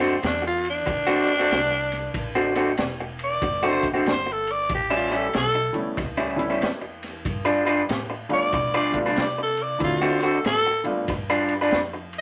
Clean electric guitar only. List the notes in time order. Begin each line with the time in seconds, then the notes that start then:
0.00 D3 A3 C4 F#4
0.23 muted clean electric guitar stroke
0.42 muted clean electric guitar stroke
0.86 muted clean electric guitar stroke
1.07 D3 A3 C4 F#4
1.39 D3 A3 C4 F#4
1.71 muted clean electric guitar stroke
2.35 D3 A3 C4 F#4
2.55 D3 A3 C4 F#4
2.79 muted clean electric guitar stroke
3.00 muted clean electric guitar stroke
3.43 muted clean electric guitar stroke
3.63 D3 A3 C4 F#4
3.94 D3 A3 C4 F#4
4.26 muted clean electric guitar stroke
4.90 A2 G3 C#4 E4
5.11 A2 G3 C#4 E4
5.34 muted clean electric guitar stroke
5.55 muted clean electric guitar stroke
5.97 muted clean electric guitar stroke
6.17 A2 G3 C#4 E4
6.50 A2 G3 C#4 E4
6.81 muted clean electric guitar stroke
7.45 G3 D4 F4 B4
7.65 G3 D4 F4 B4
7.89 muted clean electric guitar stroke
8.10 muted clean electric guitar stroke
8.53 muted clean electric guitar stroke
8.74 G3 D4 F4 B4
9.06 G3 D4 F4 B4
9.38 muted clean electric guitar stroke
10.02 D3 A3 C4 F#4
10.22 D3 A3 C4 F#4
10.45 muted clean electric guitar stroke
10.66 muted clean electric guitar stroke
11.09 muted clean electric guitar stroke
11.30 G3 D4 F4 B4
11.61 G3 D4 F4 B4
11.93 muted clean electric guitar stroke